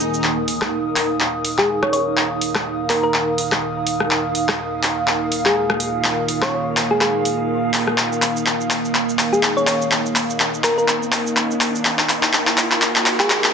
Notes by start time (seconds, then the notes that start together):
Already playing: D#3 A#3 D#4 A#4 F#5 G#5 D#6, swell
0.00 shaker
0.14 shaker
0.24 D#3 A#3 A#4 D#5, clap
0.48 F5, open hi-hat
0.62 cross-stick, clap
0.96 clap, open hi-hat
1.20 clap
1.45 open hi-hat
1.58 G#4, clap
1.83 C#5, cross-stick
1.93 C#5, open hi-hat
2.17 clap
2.41 open hi-hat
2.55 cross-stick, clap
2.90 A#4, clap, open hi-hat
3.04 A#4
3.14 clap
3.38 open hi-hat
3.52 cross-stick, clap
3.87 open hi-hat
4.00 cross-stick
4.11 F5, clap
4.35 open hi-hat
4.49 cross-stick, clap
4.83 clap, open hi-hat
5.08 clap
5.32 open hi-hat
5.46 G#4, clap
5.70 cross-stick
5.80 open hi-hat
6.04 clap
6.28 open hi-hat
6.42 C#5, cross-stick, clap
6.77 clap, open hi-hat
6.91 G#4
7.01 G#4, clap
7.25 open hi-hat
7.74 clap, open hi-hat
7.88 cross-stick
7.98 D#5, clap, riser, shaker
8.12 shaker
8.22 clap, open hi-hat, shaker
8.37 shaker
8.46 clap, shaker
8.61 shaker
8.70 clap, open hi-hat, shaker
8.85 shaker
8.95 clap, shaker
9.09 shaker
9.19 clap, open hi-hat, shaker
9.33 G#4, shaker
9.43 clap, shaker
9.57 C#5, shaker
9.67 C#5, clap, open hi-hat, shaker
9.82 shaker
9.91 clap, shaker
10.06 shaker
10.16 clap, open hi-hat, shaker
10.30 shaker
10.40 clap, shaker
10.54 shaker
10.64 A#4, clap, open hi-hat, shaker
10.78 A#4, shaker
10.88 clap, shaker
11.03 shaker
11.12 clap, open hi-hat, shaker
11.27 shaker
11.37 clap, shaker
11.51 shaker
11.61 clap, open hi-hat, shaker
11.75 shaker
11.85 G#5, clap, shaker
11.99 clap, shaker
12.09 clap, open hi-hat, shaker
12.23 clap, shaker
12.33 clap, shaker
12.47 clap, shaker
12.58 clap, open hi-hat, shaker
12.71 clap, shaker
12.82 clap, shaker
12.96 clap, shaker
13.06 clap, open hi-hat, shaker
13.20 G#4, clap, shaker
13.30 clap, shaker
13.44 clap, shaker